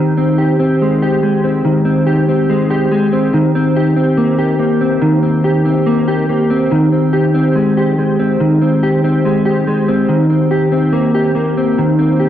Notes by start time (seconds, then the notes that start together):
Already playing: D#3 C4 G4
0.17 C4
0.38 G4
0.59 C4
0.82 G#3
1.02 G4
1.23 G#3
1.44 C4
1.65 D#3
1.85 C4
2.07 G4
2.29 C4
2.50 G#3
2.70 G4
2.91 G#3
3.12 C4
3.33 D#3
3.55 C4
3.76 G4
3.96 C4
4.17 A#3
4.39 G4
4.59 A#3
4.81 C4
5.02 D#3
5.23 C4
5.44 G4
5.65 C4
5.86 A#3
6.08 G4
6.29 A#3
6.50 C4
6.71 D#3
6.92 C4
7.13 G4
7.34 C4
7.55 G#3
7.77 G4
7.98 G#3
8.19 C4
8.40 D#3
8.62 C4
8.83 G4
9.04 C4
9.25 G#3
9.45 G4
9.67 G#3
9.88 C4
10.09 D#3
10.30 C4
10.51 G4
10.72 C4
10.93 A#3
11.14 G4
11.35 A#3
11.57 C4
11.78 D#3
11.99 C4
12.20 G4